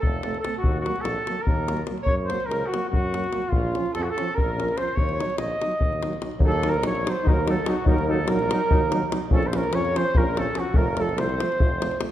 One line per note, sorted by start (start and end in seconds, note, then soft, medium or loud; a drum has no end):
0.00 0.36 F1 medium
0.00 0.39 A4 medium
0.00 davul low medium
0.23 0.33 A3 medium
0.23 0.33 C4 soft
0.23 davul high medium
0.34 davul high soft
0.40 0.51 C4 soft
0.40 0.57 A4 medium
0.45 0.53 A3 soft
0.45 davul high medium
0.55 0.80 F#4 medium
0.55 davul high soft
0.63 0.86 D#2 medium
0.63 davul low medium
0.80 1.02 F#4 medium
0.86 0.94 F#3 medium
0.86 0.94 A#3 medium
0.86 davul high medium
0.96 davul high soft
1.01 1.17 A#1 medium
1.01 1.44 A4 medium
1.01 1.43 A4 loud
1.05 davul high medium
1.27 1.37 F#3 soft
1.27 1.36 A#3 medium
1.27 davul high medium
1.42 1.85 A#4 medium
1.42 1.86 A#4 medium
1.47 1.80 D#2 loud
1.47 davul low medium
1.68 1.79 F#3 medium
1.68 1.76 A#3 medium
1.68 davul high medium
1.77 davul high soft
1.86 1.98 F#3 medium
1.86 1.95 A#3 medium
1.86 davul high medium
1.98 davul high soft
2.03 2.14 C#5 medium
2.03 2.15 C#5 loud
2.03 davul low medium
2.08 2.31 F#2 medium
2.24 2.47 C5 medium
2.24 2.48 C5 medium
2.29 2.39 F#3 medium
2.29 2.37 A#3 medium
2.29 davul high medium
2.40 davul high soft
2.46 2.62 C#2 medium
2.46 2.68 A#4 medium
2.46 2.70 A#4 medium
2.51 davul high medium
2.66 2.89 F#4 medium
2.66 2.90 F#4 medium
2.73 2.81 F#3 medium
2.73 2.81 A#3 medium
2.73 davul high medium
2.89 3.25 F#2 medium
2.89 3.50 F#4 loud
2.89 3.53 F#4 medium
2.93 davul low medium
3.13 3.23 F#3 medium
3.13 3.21 A#3 medium
3.13 davul high medium
3.24 davul high soft
3.32 3.42 F#3 medium
3.32 3.40 A#3 medium
3.32 davul high medium
3.42 davul high soft
3.49 3.75 A#1 loud
3.49 3.93 F4 medium
3.49 3.95 F4 medium
3.49 davul low medium
3.74 3.82 C#4 medium
3.74 davul high soft
3.79 3.86 F3 medium
3.86 davul high soft
3.94 4.08 F2 medium
3.94 4.04 A4 loud
3.94 4.08 A4 medium
3.94 davul high medium
4.02 4.11 F#4 medium
4.02 4.12 F#4 medium
4.10 4.36 A4 loud
4.10 4.39 A4 medium
4.17 4.27 F3 medium
4.17 4.25 C#4 medium
4.17 davul high medium
4.28 davul high soft
4.34 4.79 A#4 medium
4.34 davul low medium
4.38 4.71 A#1 medium
4.58 4.69 F3 medium
4.58 4.66 C#4 medium
4.58 davul high medium
4.68 davul high soft
4.76 4.84 C#4 medium
4.76 4.96 C5 medium
4.76 4.97 C5 medium
4.76 davul high medium
4.80 4.87 F3 medium
4.88 davul high soft
4.95 5.20 D#2 medium
4.95 5.38 C#5 loud
4.95 5.38 C#5 medium
4.95 davul low medium
5.09 davul high soft
5.18 5.26 D#4 medium
5.18 davul high medium
5.24 5.31 F#3 medium
5.30 davul high soft
5.38 5.51 A#1 loud
5.38 6.18 D#5 medium
5.38 davul high medium
5.61 5.69 D#4 medium
5.61 davul high medium
5.65 5.73 F#3 medium
5.71 davul high soft
5.80 6.14 D#2 medium
5.80 davul low medium
5.93 davul high soft
6.02 6.13 F#3 medium
6.02 6.10 D#4 medium
6.02 davul high medium
6.13 davul high soft
6.22 6.30 F#3 soft
6.22 6.30 D#4 soft
6.22 davul high medium
6.31 davul high soft
6.39 6.86 D#2 loud
6.39 6.50 D#4 medium
6.39 davul low loud
6.44 6.52 F#3 medium
6.44 6.68 A4 medium
6.44 6.71 A4 loud
6.52 davul high soft
6.63 6.72 F#3 medium
6.63 6.72 D#4 medium
6.63 6.85 A#4 medium
6.63 davul high medium
6.70 6.85 A#4 loud
6.74 davul high soft
6.82 7.07 A#1 loud
6.82 6.93 F#3 medium
6.82 6.92 D#4 medium
6.82 7.11 C#5 medium
6.82 davul high medium
6.86 7.10 C#5 medium
6.95 davul high soft
7.04 7.15 F#3 medium
7.04 7.13 D#4 medium
7.04 davul high medium
7.09 7.32 C5 medium
7.09 7.30 C5 medium
7.23 7.58 D#2 loud
7.23 7.32 D#4 medium
7.23 davul low loud
7.27 7.36 F#3 medium
7.27 7.52 A#4 medium
7.27 7.55 A#4 medium
7.46 7.55 F#3 medium
7.46 7.54 D#4 medium
7.46 davul high medium
7.50 7.70 A4 medium
7.50 7.75 A4 medium
7.66 7.75 F#3 medium
7.66 7.74 D#4 medium
7.66 7.87 F#4 medium
7.66 davul high medium
7.73 7.89 F#4 medium
7.85 8.31 D#2 loud
7.85 7.94 F#3 medium
7.85 7.95 D#4 medium
7.85 8.09 A#4 medium
7.85 davul low loud
7.91 8.10 A#4 medium
7.98 davul high soft
8.09 8.18 F#3 medium
8.09 8.17 D#4 medium
8.09 8.30 A4 medium
8.13 8.31 A4 medium
8.28 8.52 A#1 loud
8.28 8.38 F#3 medium
8.28 8.38 D#4 medium
8.28 9.12 A#4 loud
8.28 9.12 A#4 medium
8.28 davul high medium
8.39 davul high soft
8.51 8.60 F#3 medium
8.51 8.60 D#4 medium
8.51 davul high medium
8.71 9.04 D#2 medium
8.71 8.81 F#3 medium
8.71 8.79 D#4 medium
8.71 davul low loud
8.92 9.01 F#3 medium
8.92 9.00 D#4 medium
8.92 davul high medium
9.12 9.20 F#3 medium
9.12 9.19 D#4 medium
9.12 davul high medium
9.31 9.74 A#1 loud
9.31 9.41 F3 medium
9.31 9.40 C#4 medium
9.31 9.48 A4 medium
9.31 9.49 A4 loud
9.31 davul low loud
9.43 davul high soft
9.47 9.58 C5 medium
9.47 9.57 C5 medium
9.53 9.61 F3 medium
9.53 9.62 C#4 medium
9.53 9.76 A#4 loud
9.53 9.78 A#4 medium
9.53 davul high medium
9.64 davul high soft
9.72 9.96 F2 medium
9.72 9.82 F3 medium
9.72 9.82 C#4 medium
9.72 9.98 C#5 loud
9.72 10.01 C#5 medium
9.72 davul high medium
9.85 davul high soft
9.95 10.04 F3 medium
9.95 10.03 C#4 medium
9.95 10.19 C5 loud
9.95 davul high medium
9.99 10.19 C5 medium
10.14 10.48 A#1 loud
10.14 10.25 F3 medium
10.14 10.24 C#4 medium
10.14 10.41 A#4 loud
10.14 10.39 A#4 medium
10.14 davul low loud
10.37 10.44 F3 medium
10.37 10.46 C#4 medium
10.37 10.60 A4 medium
10.37 davul high medium
10.55 10.62 F3 medium
10.55 10.63 C#4 medium
10.55 10.78 F#4 medium
10.55 10.77 F#4 medium
10.55 davul high medium
10.74 11.18 F1 loud
10.74 10.84 F3 medium
10.74 10.83 A3 medium
10.74 11.01 A#4 medium
10.74 11.02 A#4 medium
10.74 davul low loud
10.97 11.06 F3 medium
10.97 11.05 A3 medium
10.97 11.21 A4 medium
10.97 davul high medium
11.01 11.20 A4 medium
11.09 davul high soft
11.17 11.40 C2 loud
11.17 11.26 F3 medium
11.17 11.26 A3 medium
11.17 12.01 C5 loud
11.17 12.01 C5 medium
11.17 davul high medium
11.29 davul high soft
11.39 11.48 F3 medium
11.39 11.47 A3 medium
11.39 davul high medium
11.52 davul high soft
11.59 11.93 F1 medium
11.59 11.69 F3 medium
11.59 11.67 A3 medium
11.59 davul low loud
11.81 11.89 F3 medium
11.81 11.89 A3 medium
11.81 davul high medium
11.91 davul high soft
12.00 12.08 F3 medium
12.00 12.08 A3 medium
12.00 davul high medium